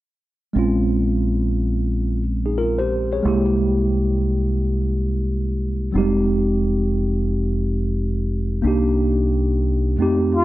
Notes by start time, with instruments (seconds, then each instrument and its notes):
0.53 fingered electric bass A#1, tine electric piano G#3 C4 C#4
0.59 tine electric piano F4
2.46 tine electric piano D#4 G#4
2.58 tine electric piano F4 A#4
2.79 tine electric piano G4 C5
3.13 tine electric piano G#4 C#5
3.23 fingered electric bass C2, tine electric piano G#3 A#3 E4
3.28 tine electric piano G4
5.92 fingered electric bass F1, tine electric piano G3 C4 D#4
5.98 tine electric piano G#3 G4
8.62 fingered electric bass C2, tine electric piano A#3 D4 D#4
8.67 tine electric piano G4
9.97 tine electric piano F2 A3 C4 D#4
10.02 tine electric piano G4
10.35 flugelhorn F4